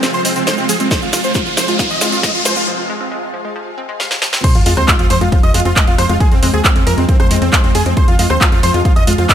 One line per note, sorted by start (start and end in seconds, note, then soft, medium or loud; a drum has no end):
0.00 0.07 F3 medium
0.00 0.10 C4 medium
0.00 snare medium
0.00 closed hi-hat medium
0.00 riser medium
0.00 shaker soft
0.13 0.21 C5 medium
0.13 shaker soft
0.25 0.29 G#3 loud
0.25 0.32 C4 medium
0.25 open hi-hat loud
0.25 shaker medium
0.36 0.39 C4 medium
0.36 0.43 C4 medium
0.36 closed hi-hat medium
0.36 shaker soft
0.47 0.50 G#3 medium
0.47 0.54 C5 medium
0.47 snare medium
0.47 closed hi-hat medium
0.47 shaker medium
0.58 0.65 C4 medium
0.58 shaker soft
0.69 0.72 F3 medium
0.69 0.76 G#4 medium
0.69 open hi-hat loud
0.69 shaker medium
0.80 0.84 G#3 medium
0.80 0.87 C4 medium
0.80 closed hi-hat medium
0.80 shaker soft
0.91 0.95 F3 medium
0.91 0.98 C5 medium
0.91 kick loud
0.91 snare medium
0.91 closed hi-hat medium
0.91 shaker medium
1.02 1.09 F4 medium
1.02 shaker soft
1.13 1.18 G#3 loud
1.13 1.20 F4 medium
1.13 snare medium
1.13 open hi-hat loud
1.13 shaker medium
1.24 1.27 C4 medium
1.24 1.31 C5 loud
1.24 closed hi-hat medium
1.24 shaker soft
1.34 1.38 G#3 medium
1.34 1.43 F4 medium
1.34 kick loud
1.34 snare medium
1.34 closed hi-hat medium
1.34 shaker medium
1.46 1.54 F4 medium
1.46 shaker soft
1.57 1.60 F3 medium
1.57 1.65 C5 medium
1.57 snare medium
1.57 open hi-hat loud
1.57 shaker medium
1.68 1.73 G#3 medium
1.68 1.76 F4 medium
1.68 closed hi-hat medium
1.68 shaker soft
1.79 1.84 F3 medium
1.79 1.87 F4 medium
1.79 kick loud
1.79 snare medium
1.79 closed hi-hat medium
1.79 shaker medium
1.90 1.98 D#5 medium
1.90 shaker soft
2.01 2.06 G#3 loud
2.01 2.09 F4 medium
2.01 snare medium
2.01 open hi-hat loud
2.01 shaker medium
2.12 2.15 C4 medium
2.12 2.20 F4 medium
2.12 closed hi-hat medium
2.12 shaker soft
2.23 2.26 G#3 medium
2.23 2.31 D#5 medium
2.23 kick loud
2.23 snare medium
2.23 closed hi-hat medium
2.23 shaker medium
2.35 2.42 F4 medium
2.35 shaker soft
2.45 2.48 F3 medium
2.45 2.53 C5 medium
2.45 snare medium
2.45 open hi-hat loud
2.45 shaker loud
2.56 2.61 G#3 medium
2.56 2.64 F4 medium
2.56 closed hi-hat medium
2.56 shaker soft
2.67 2.72 F3 medium
2.89 2.94 G#3 loud
3.00 3.03 C4 medium
3.12 3.14 G#3 medium
3.34 3.36 F3 medium
3.45 3.49 G#3 medium
3.56 3.60 F3 medium
3.78 3.81 C4 medium
3.89 3.92 G#3 medium
4.00 4.07 F5 medium
4.00 snare medium
4.11 snare medium
4.22 4.25 F3 medium
4.22 snare medium
4.33 4.36 C4 medium
4.33 snare medium
4.44 4.49 F3 medium
4.44 4.51 C5 loud
4.44 4.51 C6 loud
4.44 kick loud
4.44 closed hi-hat medium
4.44 crash loud
4.44 sub drop medium
4.55 4.63 F2 medium
4.55 4.62 F4 medium
4.55 4.62 F5 medium
4.55 closed hi-hat medium
4.66 4.74 F2 loud
4.66 4.71 G#3 loud
4.66 4.73 F4 medium
4.66 4.73 F5 medium
4.66 open hi-hat loud
4.77 4.85 D#2 medium
4.77 4.80 C4 medium
4.77 4.84 C5 medium
4.77 4.84 C6 medium
4.77 cross-stick medium
4.77 closed hi-hat medium
4.88 4.91 G#3 medium
4.88 4.95 F4 medium
4.88 4.95 F5 medium
4.88 kick loud
4.88 clap loud
4.88 closed hi-hat medium
4.99 5.07 F2 medium
4.99 5.06 F4 medium
4.99 5.06 F5 medium
4.99 closed hi-hat medium
5.10 5.18 F2 loud
5.10 5.13 F3 medium
5.10 5.17 C5 medium
5.10 5.17 C6 medium
5.10 open hi-hat loud
5.21 5.29 F2 medium
5.21 5.26 G#3 medium
5.21 5.28 F4 medium
5.21 5.28 F5 medium
5.21 closed hi-hat medium
5.32 5.37 F3 medium
5.32 5.40 F4 medium
5.32 5.39 F5 medium
5.32 kick loud
5.32 closed hi-hat medium
5.43 5.51 F2 medium
5.43 5.51 D#5 medium
5.43 5.51 D#6 loud
5.43 closed hi-hat medium
5.54 5.62 F2 loud
5.54 5.59 G#3 loud
5.54 5.62 F4 medium
5.54 5.62 F5 medium
5.54 open hi-hat loud
5.65 5.73 F2 medium
5.65 5.68 C4 medium
5.65 5.73 F4 medium
5.65 5.73 F5 medium
5.65 closed hi-hat medium
5.76 5.79 G#3 medium
5.76 5.84 D#5 medium
5.76 5.84 D#6 medium
5.76 kick loud
5.76 clap loud
5.76 closed hi-hat medium
5.87 5.95 F2 medium
5.87 5.95 F4 medium
5.87 5.95 F5 medium
5.87 closed hi-hat medium
5.98 6.06 F2 loud
5.98 6.01 F3 medium
5.98 6.06 C5 medium
5.98 6.06 C6 medium
5.98 cross-stick medium
5.98 open hi-hat loud
6.09 6.18 F2 medium
6.09 6.14 G#3 medium
6.09 6.17 F4 medium
6.09 6.17 F5 medium
6.09 closed hi-hat medium
6.20 6.25 F3 medium
6.20 6.28 G#4 loud
6.20 6.28 G#5 loud
6.20 kick loud
6.20 closed hi-hat medium
6.31 6.40 F2 medium
6.31 6.39 C4 medium
6.31 6.39 C5 medium
6.31 closed hi-hat medium
6.42 6.51 F2 loud
6.42 6.47 G#3 loud
6.42 6.50 C4 medium
6.42 6.50 C5 medium
6.42 open hi-hat loud
6.53 6.62 D#2 medium
6.53 6.56 C4 medium
6.53 6.61 G#4 loud
6.53 6.61 G#5 medium
6.53 closed hi-hat medium
6.64 6.67 G#3 medium
6.64 6.72 C4 medium
6.64 6.72 C5 medium
6.64 kick loud
6.64 clap loud
6.64 closed hi-hat medium
6.76 6.84 F2 medium
6.76 6.83 C4 medium
6.76 6.83 C5 medium
6.76 closed hi-hat medium
6.87 6.95 F2 loud
6.87 6.89 F3 medium
6.87 6.94 A#4 medium
6.87 6.94 A#5 medium
6.87 open hi-hat loud
6.98 7.06 F2 medium
6.98 7.02 G#3 medium
6.98 7.05 C4 medium
6.98 7.05 C5 medium
6.98 closed hi-hat medium
7.09 7.13 F3 medium
7.09 7.16 C4 medium
7.09 7.16 C5 medium
7.09 kick loud
7.09 closed hi-hat medium
7.20 7.28 F2 medium
7.20 7.27 C5 loud
7.20 7.27 C6 medium
7.20 cross-stick medium
7.20 closed hi-hat medium
7.31 7.39 F2 loud
7.31 7.35 G#3 loud
7.31 7.38 C4 medium
7.31 7.38 C5 medium
7.31 open hi-hat loud
7.36 closed hi-hat medium
7.42 7.50 F2 medium
7.42 7.45 C4 medium
7.42 7.49 C4 medium
7.42 7.49 C5 medium
7.42 closed hi-hat medium
7.53 7.56 G#3 medium
7.53 7.60 C5 medium
7.53 7.60 C6 medium
7.53 kick loud
7.53 clap loud
7.53 closed hi-hat medium
7.64 7.72 F2 medium
7.64 7.71 C4 medium
7.64 7.71 C5 medium
7.64 closed hi-hat medium
7.75 7.83 F2 loud
7.75 7.78 F3 medium
7.75 7.82 G#4 medium
7.75 7.82 G#5 medium
7.75 open hi-hat loud
7.86 7.94 F2 medium
7.86 7.90 G#3 medium
7.86 7.93 C4 medium
7.86 7.93 C5 medium
7.86 closed hi-hat medium
7.97 8.02 F3 medium
7.97 8.04 C5 loud
7.97 8.04 C6 loud
7.97 kick loud
7.97 closed hi-hat medium
8.08 8.16 F2 medium
8.08 8.15 F4 medium
8.08 8.15 F5 medium
8.08 closed hi-hat medium
8.19 8.27 F2 loud
8.19 8.24 G#3 loud
8.19 8.26 F4 medium
8.19 8.26 F5 medium
8.19 open hi-hat loud
8.30 8.38 D#2 medium
8.30 8.33 C4 medium
8.30 8.37 C5 loud
8.30 8.37 C6 medium
8.30 cross-stick medium
8.30 closed hi-hat medium
8.41 8.44 G#3 medium
8.41 8.48 F4 medium
8.41 8.48 F5 medium
8.41 kick loud
8.41 clap loud
8.41 closed hi-hat medium
8.52 8.60 F2 medium
8.52 8.59 F4 medium
8.52 8.59 F5 medium
8.52 closed hi-hat medium
8.63 8.71 F2 loud
8.63 8.66 F3 medium
8.63 8.70 C5 medium
8.63 8.70 C6 medium
8.63 open hi-hat loud
8.74 8.82 F2 medium
8.74 8.79 G#3 medium
8.74 8.81 F4 medium
8.74 8.81 F5 medium
8.74 closed hi-hat medium
8.85 8.90 F3 medium
8.85 8.92 F4 medium
8.85 8.92 F5 medium
8.85 kick loud
8.85 closed hi-hat medium
8.96 9.04 F2 medium
8.96 9.04 D#5 medium
8.96 9.03 D#6 medium
8.96 closed hi-hat medium
9.07 9.15 F2 loud
9.07 9.12 G#3 loud
9.07 9.15 F4 medium
9.07 9.15 F5 medium
9.07 open hi-hat loud
9.18 9.26 F2 medium
9.18 9.21 C4 medium
9.18 9.25 F4 medium
9.18 9.26 F5 medium
9.18 closed hi-hat medium
9.29 9.32 G#3 medium
9.29 9.34 D#5 medium
9.29 9.34 D#6 medium
9.29 kick loud
9.29 clap loud
9.29 closed hi-hat medium